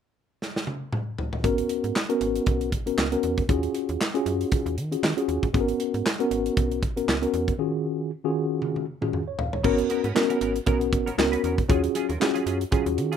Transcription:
0.42 snare
0.56 snare
0.67 high tom
0.93 mid tom
1.18 floor tom
1.33 floor tom
1.43 fm bass G#1, tine electric piano B3 C#4 F#4 A#4, kick, closed hi-hat
1.58 closed hi-hat
1.69 closed hi-hat
1.84 fm bass G#2, closed hi-hat
1.96 snare, clap
2.09 tine electric piano B3 C#4 F#4 A#4, closed hi-hat
2.21 fm bass G#1, closed hi-hat
2.36 closed hi-hat
2.46 fm bass B1, kick, closed hi-hat
2.61 closed hi-hat
2.72 fm bass G#1, kick, closed hi-hat
2.86 tine electric piano B3 C#4 F#4 A#4, closed hi-hat
2.98 fm bass C#2, snare, clap
3.12 tine electric piano B3 C#4 F#4 A#4, closed hi-hat
3.23 fm bass E2, closed hi-hat
3.38 kick, closed hi-hat
3.49 fm bass D#2, tine electric piano C#4 F4 F#4 G#4, kick, closed hi-hat
3.63 closed hi-hat
3.75 closed hi-hat
3.89 fm bass D#2, closed hi-hat
4.01 snare, clap
4.14 tine electric piano C#4 F4 F#4 G#4, closed hi-hat
4.26 fm bass F#2, closed hi-hat
4.41 closed hi-hat
4.52 kick, closed hi-hat
4.66 fm bass D#2, closed hi-hat
4.77 fm bass D#3, closed hi-hat
4.92 tine electric piano C#4 F4 F#4 G#4, closed hi-hat
5.03 fm bass D#3, snare, clap
5.17 tine electric piano C#4 F4 F#4 G#4, closed hi-hat
5.28 fm bass D#2, closed hi-hat
5.43 fm bass A1, kick, closed hi-hat
5.54 fm bass G#1, tine electric piano B3 C#4 F#4 G#4, kick, closed hi-hat
5.61 tine electric piano A#4
5.68 closed hi-hat
5.80 closed hi-hat
5.94 fm bass G#2, closed hi-hat
6.06 snare, clap
6.19 tine electric piano B3 C#4 F#4 A#4, closed hi-hat
6.31 fm bass G#1, closed hi-hat
6.46 closed hi-hat
6.57 fm bass B1, kick, closed hi-hat
6.71 closed hi-hat
6.83 fm bass G#1, kick, closed hi-hat
6.96 tine electric piano B3 C#4 F#4 A#4, closed hi-hat
7.08 fm bass C#2, snare, clap
7.22 tine electric piano B3 C#4 F#4 A#4, closed hi-hat
7.34 fm bass E2, closed hi-hat
7.48 kick, closed hi-hat
7.59 tine electric piano D#3 C#4 F4 F#4 G#4
8.24 tine electric piano D#3 C#4 F4 F#4 G#4
8.62 high tom
8.76 high tom
9.02 tine electric piano D#3 C#4 F4 F#4 G#4, mid tom
9.13 mid tom
9.28 tine electric piano C#5
9.39 tine electric piano F5, floor tom
9.53 tine electric piano C#5, floor tom
9.64 fm bass G#1, clean electric guitar B3 C#4 F#4 A#4, tine electric piano B3 C#4 F#4 A#4, kick, crash
9.78 muted clean electric guitar stroke, closed hi-hat
9.89 clean electric guitar B3 C#4 F#4 A#4, closed hi-hat
10.04 fm bass G#2, clean electric guitar B3 C#4 F#4 B4, closed hi-hat
10.15 tine electric piano B3 C#4 F#4 A#4, muted clean electric guitar stroke, snare, clap
10.29 clean electric guitar B3 C#4 F#4 A#4, closed hi-hat
10.41 fm bass G#1, clean electric guitar B3 C#4 F#4 A#4, closed hi-hat
10.55 muted clean electric guitar stroke, closed hi-hat
10.66 fm bass B1, clean electric guitar B3 C#4 F#4 A#4, tine electric piano B3 C#4 F#4 A#4, kick, closed hi-hat
10.81 muted clean electric guitar stroke, closed hi-hat
10.92 fm bass G#1, muted clean electric guitar stroke, kick, closed hi-hat
11.06 clean electric guitar B3 C#4 F#4 A#4, closed hi-hat
11.18 fm bass C#2, tine electric piano B3 C#4 F#4 A#4, muted clean electric guitar stroke, snare, clap
11.32 clean electric guitar B3 C#4 F#4 B4, closed hi-hat
11.43 fm bass E2, clean electric guitar B3 C#4 F#4 A#4, closed hi-hat
11.58 muted clean electric guitar stroke, kick, closed hi-hat
11.69 fm bass D#2, clean electric guitar F#3 C#4 F4 G#4, tine electric piano C#4 F4 F#4 G#4, kick, closed hi-hat
11.83 muted clean electric guitar stroke, closed hi-hat
11.95 clean electric guitar F#3 C#4 F4 G#4, closed hi-hat
12.09 fm bass D#2, clean electric guitar F#3 C#4 F4 A#4, closed hi-hat
12.20 tine electric piano C#4 F4 F#4 G#4, muted clean electric guitar stroke, snare, clap
12.34 clean electric guitar F#3 C#4 F4 G#4, closed hi-hat
12.46 fm bass F#2, clean electric guitar F#3 C#4 F4 G#4, closed hi-hat
12.60 muted clean electric guitar stroke, closed hi-hat
12.71 clean electric guitar F#3 C#4 F4 G#4, tine electric piano C#4 F4 F#4 G#4, kick, closed hi-hat
12.86 fm bass D#2, muted clean electric guitar stroke, closed hi-hat
12.98 fm bass D#3, muted clean electric guitar stroke, closed hi-hat
13.12 clean electric guitar F#3 C#4 F4 G#4, closed hi-hat

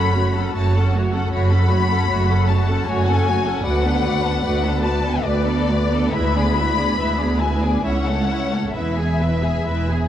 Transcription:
Already playing: double bass section F#1, cello section F#2, viola section C#4 A4, violin section A4 F#5 B5
0.12 viola section A3 F#4, violin section F#4 C#5
0.35 viola section C#4 A4, violin section A4 F#5
0.54 double bass section F#1, cello section F#2, viola section A3 F#4, violin section F#4 C#5 A5
0.76 viola section C#4 A4, violin section A4 F#5
0.94 viola section A3 F#4, violin section F#4 C#5
1.12 viola section C#4 A4, violin section A4 F#5
1.31 double bass section F#1, cello section F#2, viola section A3 F#4, violin section F#4 C#5 B5
1.51 viola section C#4 A4, violin section A4 F#5
1.70 viola section A3 F#4, violin section F#4 C#5
1.89 viola section C#4 A4, violin section A4 F#5
2.08 double bass section F#1, cello section F#2, viola section A3 F#4, violin section F#4 C#5
2.29 viola section C#4 A4, violin section A4 F#5
2.48 viola section A3 F#4, violin section F#4 C#5 A5
2.67 viola section C#4 A4, violin section A4 F#5
2.86 double bass section F#1, cello section F#2, viola section A3 F#4, violin section F#4 C#5 G#5
3.05 violin section A4 F#5
3.09 viola section C#4 A4
3.25 viola section A3 F#4, violin section F#4 C#5
3.45 viola section C#4 A4, violin section A4 F#5
3.63 cello section D2, double bass section D2, viola section A3 F#4, violin section B4 D5 F#5
3.83 viola section B3 D4, violin section A4 B4
4.04 viola section A3 F#4, violin section B4 D5
4.23 viola section B3 D4, violin section A4 B4
4.44 double bass section D2, cello section D2, viola section A3 F#4, violin section B4 D5
4.63 viola section B3 D4, violin section A4 B4
4.83 viola section A3 F#4, violin section B4 D5 A5
5.03 viola section B3 D4, violin section A4 B4
5.23 double bass section D2, cello section D2, viola section A3 F#4, violin section B4 D5
5.46 viola section B3 D4, violin section A4 B4
5.70 viola section A3 F#4, violin section B4 D5
5.91 viola section B3 D4, violin section A4 B4
6.12 cello section D2, double bass section D2, viola section G#3 E4, violin section B4 E5 B5
6.34 viola section B3 D4, violin section G#4 D5
6.56 viola section G#3 E4, violin section B4 E5
6.76 viola section B3 D4, violin section G#4 D5
6.97 double bass section D2, cello section D2, viola section G#3 E4, violin section B4 E5
7.18 viola section B3 D4, violin section G#4 D5
7.40 viola section G#3 E4, violin section B4 E5 G#5
7.62 viola section B3 D4, violin section G#4 D5
7.83 double bass section C#2, cello section C#2, viola section C#4 E4, violin section C#5 E5 F#5
8.07 viola section A3 C#4, violin section A4 C#5
8.28 viola section C#4 E4, violin section C#5 E5
8.52 viola section A3 C#4, violin section A4 C#5
8.74 double bass section E1, cello section E2, viola section G#3 E4, violin section B4 E5
8.97 viola section B3 G#4, violin section G#4 G#5
9.21 viola section G#3 E4, violin section B4 E5
9.43 viola section B3 G#4, violin section G#4 G#5
9.65 double bass section E1, cello section E2, viola section G#3 E4, violin section B4 E5
9.89 viola section B3 G#4, violin section G#4 G#5

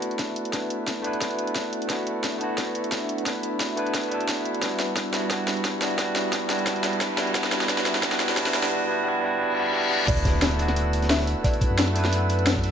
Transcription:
Already playing: tine electric piano A3 B3 D4 E4 F#4, analog synth pad D4 F#4 B4 E5
0.02 closed hi-hat
0.11 closed hi-hat
0.19 kick, snare, closed hi-hat
0.36 closed hi-hat
0.45 closed hi-hat
0.50 tine electric piano A3 B3 D4, kick, snare, closed hi-hat
0.55 tine electric piano E4 B4
0.70 closed hi-hat
0.87 kick, snare, closed hi-hat
1.02 tine electric piano A3 B3 D4, closed hi-hat
1.06 tine electric piano E4 B4
1.13 closed hi-hat
1.21 kick, snare, closed hi-hat
1.31 closed hi-hat
1.39 closed hi-hat
1.47 closed hi-hat
1.55 kick, snare, closed hi-hat
1.73 closed hi-hat
1.82 closed hi-hat
1.87 tine electric piano A3 B3 D4, kick, snare, closed hi-hat
1.91 tine electric piano E4 F#4
2.07 closed hi-hat
2.24 kick, snare, closed hi-hat
2.38 tine electric piano A3 B3 D4, closed hi-hat
2.42 tine electric piano E4 F#4
2.58 kick, snare, closed hi-hat
2.75 closed hi-hat
2.84 closed hi-hat
2.92 kick, snare, closed hi-hat
3.09 closed hi-hat
3.18 closed hi-hat
3.23 tine electric piano A3 B3 D4, kick, snare, closed hi-hat
3.28 tine electric piano E4 B4
3.43 closed hi-hat
3.60 kick, snare, closed hi-hat
3.76 tine electric piano A3 B3 D4 E4 B4, closed hi-hat
3.87 closed hi-hat
3.94 kick, snare, closed hi-hat
4.03 closed hi-hat
4.09 tine electric piano A3 B3 D4, closed hi-hat
4.13 tine electric piano E4 A4
4.21 closed hi-hat
4.28 kick, snare, closed hi-hat
4.45 closed hi-hat
4.54 closed hi-hat
4.60 tine electric piano G3 B3 D4, analog synth pad G3 F#4, kick, snare, closed hi-hat, riser
4.64 tine electric piano E4 F#4
4.80 snare, closed hi-hat
4.97 kick, snare, closed hi-hat
5.11 tine electric piano G3 B3 D4, snare, closed hi-hat
5.15 tine electric piano E4 F#4
5.28 tine electric piano G3 B3 D4, kick, snare, closed hi-hat
5.32 tine electric piano E4 F#4
5.48 snare, closed hi-hat
5.57 closed hi-hat
5.65 kick, snare, closed hi-hat
5.79 tine electric piano G3 B3 D4, snare, closed hi-hat
5.83 tine electric piano E4 F#4
5.91 closed hi-hat
5.96 tine electric piano G3 B3 D4, kick, snare, closed hi-hat
6.00 tine electric piano E4 F#4
6.16 snare, closed hi-hat
6.33 kick, snare, closed hi-hat
6.47 tine electric piano G3 B3 D4, snare, closed hi-hat
6.51 tine electric piano E4 F#4
6.59 closed hi-hat
6.64 tine electric piano G3 B3 D4, kick, snare, closed hi-hat
6.69 tine electric piano E4 F#4
6.76 closed hi-hat
6.84 snare, closed hi-hat
6.93 closed hi-hat
7.01 kick, snare, closed hi-hat
7.16 tine electric piano G3 B3 D4, snare, closed hi-hat
7.20 tine electric piano E4 F#4
7.27 closed hi-hat
7.33 tine electric piano G3 B3 D4, analog synth pad D4 F#4 B4 E5, kick, snare, closed hi-hat
7.37 tine electric piano E4 F#4
7.44 snare
7.52 snare, closed hi-hat
7.61 snare
7.67 tine electric piano G3 B3 D4, kick, snare, closed hi-hat
7.71 tine electric piano E4 F#4
7.78 snare
7.86 snare, closed hi-hat
7.95 snare
8.01 tine electric piano G3 B3 D4, kick, snare, closed hi-hat
8.05 tine electric piano E4 F#4
8.12 snare
8.20 snare, closed hi-hat
8.29 snare, closed hi-hat
8.35 tine electric piano G3 B3 D4, kick, snare, closed hi-hat
8.39 tine electric piano E4 F#4
8.46 snare
8.54 snare, closed hi-hat
8.63 snare, closed hi-hat
8.69 tine electric piano G3 B3 D4
8.73 tine electric piano E4 F#4
8.86 tine electric piano G3 B3 D4
8.90 tine electric piano E4 F#4
9.03 tine electric piano G3 B3 D4
9.07 tine electric piano E4 F#4
9.20 tine electric piano G3 B3 D4
9.24 tine electric piano E4 F#4
9.37 tine electric piano G3 B3 D4, reverse cymbal
9.41 tine electric piano E4 F#4
9.54 tine electric piano G3 B3 D4
9.58 tine electric piano E4 F#4
9.71 tine electric piano G3 B3 D4
9.75 tine electric piano E4 F#4
9.88 tine electric piano G3 B3 D4, high tom
9.93 tine electric piano E4 F#4
10.00 mid tom
10.05 sub bass D2, tine electric piano A3 B3 D4, analog synth pad B4 F#5 E6, marimba D5, kick, closed hi-hat, crash, impact
10.10 tine electric piano E4 F#4
10.17 closed hi-hat
10.25 kick, snare, closed hi-hat
10.42 snare, closed hi-hat
10.51 closed hi-hat
10.56 tine electric piano A3 B3 D4, closed hi-hat
10.61 tine electric piano E4 F#4
10.68 snare
10.76 closed hi-hat
10.93 closed hi-hat
11.02 snare, closed hi-hat
11.10 marimba E5, snare, closed hi-hat
11.20 snare
11.27 closed hi-hat
11.42 tine electric piano A3 B3 D4, marimba D5, kick, closed hi-hat
11.46 tine electric piano E4 B4
11.53 closed hi-hat
11.61 kick, closed hi-hat
11.71 sub bass F#2
11.78 snare, closed hi-hat
11.88 snare, closed hi-hat
11.93 tine electric piano A3 B3 D4, closed hi-hat, open hi-hat
11.97 tine electric piano E4 B4
12.05 snare
12.13 closed hi-hat
12.29 closed hi-hat
12.39 closed hi-hat
12.47 snare, closed hi-hat
12.56 kick
12.64 closed hi-hat, open hi-hat

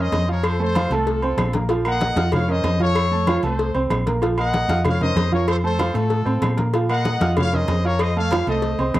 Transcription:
Already playing: grand piano C#4 A#4
0.00 trumpet section C5 D#5
0.12 fingered electric bass F2, cowbell, high conga, low timbale, low agogo
0.28 grand piano F3 F4 F5, trumpet section A#4 C#5
0.43 trumpet section A4 C5, cowbell, high conga, low agogo, claves
0.59 grand piano A3 A4 A5, trumpet section A4 C5, high conga
0.75 grand piano F3 F4 F5, cowbell, high conga, low agogo, claves
0.90 fingered electric bass C2, grand piano A3 A4 A5, trumpet section F4 A4, high conga, low agogo
1.07 cowbell, high conga
1.22 grand piano C4 C5 C6, high conga, low agogo
1.37 fingered electric bass A#1, cowbell, high conga, low timbale, low agogo, claves
1.53 grand piano A#3 A#4 A#5, cowbell, high conga
1.69 grand piano F3 F4 F5, cowbell, high conga, low agogo
1.85 grand piano A#3 A#4 A#5, trumpet section D#5 F#5, high conga, low agogo, claves
2.01 cowbell, high conga
2.16 fingered electric bass F2, grand piano F4 F5 F6, cowbell, high conga, low agogo
2.32 trumpet section C#5 F5, cowbell, high conga, low conga, low agogo, claves
2.48 grand piano C#4 A#4, trumpet section C5 D#5, high conga
2.64 fingered electric bass F2, cowbell, high conga, low timbale, low agogo
2.80 grand piano F3 F4 F5, trumpet section A4 C#5, high conga
2.95 cowbell, high conga, low agogo, claves
3.11 grand piano A3 A4 A5, high conga
3.27 grand piano F3 F4 F5, cowbell, high conga, low agogo, claves
3.43 fingered electric bass C2, grand piano A3 A4 A5, trumpet section A4 C5, high conga, low agogo
3.59 cowbell, high conga
3.75 fingered electric bass C2, grand piano C4 C5 C6, high conga, low agogo
3.90 fingered electric bass A#1, cowbell, high conga, low timbale, low agogo, claves
4.06 grand piano A#3 A#4 A#5, cowbell, high conga
4.22 grand piano F3 F4 F5, cowbell, high conga, low agogo
4.38 grand piano A#3 A#4 A#5, trumpet section D#5 F#5, high conga, low agogo, claves
4.54 cowbell, high conga
4.68 fingered electric bass F2, grand piano F4 F5 F6, cowbell, high conga, low agogo
4.85 trumpet section C#5 F5, cowbell, high conga, low conga, low agogo, claves
5.01 grand piano C#4 A#4, trumpet section C5 D#5, high conga, low conga
5.16 fingered electric bass F2, cowbell, high conga, low timbale, low agogo
5.32 grand piano F3 F4 F5, trumpet section A#4 C#5, high conga
5.48 trumpet section A4 C5, cowbell, high conga, low agogo, claves
5.64 grand piano A3 A4 A5, trumpet section A4 C5, high conga
5.79 grand piano F3 F4 F5, cowbell, high conga, low agogo, claves
5.94 fingered electric bass A2, grand piano A3 A4 A5, trumpet section F4 A4, high conga, low agogo
6.10 cowbell, high conga
6.25 fingered electric bass A2, grand piano C4 C5 C6, high conga, low agogo
6.42 fingered electric bass A#2, cowbell, high conga, low timbale, low agogo, claves
6.57 grand piano A#3 A#4 A#5, cowbell, high conga
6.74 grand piano F3 F4 F5, cowbell, high conga, low agogo
6.89 grand piano A#3 A#4 A#5, trumpet section D#5 F#5, high conga, low agogo, claves
7.05 cowbell, high conga
7.21 fingered electric bass F2, grand piano F4 F5 F6, cowbell, high conga, low agogo
7.37 trumpet section C#5 F5, cowbell, high conga, low conga, low agogo, claves
7.53 grand piano C#4 A#4, trumpet section C5 D#5, high conga, low conga
7.68 fingered electric bass F2, cowbell, high conga, low timbale, low agogo
7.84 grand piano F3 F4 F5, trumpet section A#4 C#5
7.99 trumpet section C5 D#5, cowbell, high conga, low agogo, claves
8.16 grand piano A3 A4 A5, trumpet section C#5 F5, high conga
8.31 grand piano F3 F4 F5, cowbell, high conga, high timbale, low agogo, claves
8.47 fingered electric bass C2, grand piano A3 A4 A5, trumpet section C5 D#5, high conga, low agogo
8.62 cowbell, high conga
8.79 fingered electric bass C2, grand piano C4 C5 C6, high conga, low timbale, low agogo
8.94 fingered electric bass A#1, cowbell, high conga, low timbale, low agogo, claves

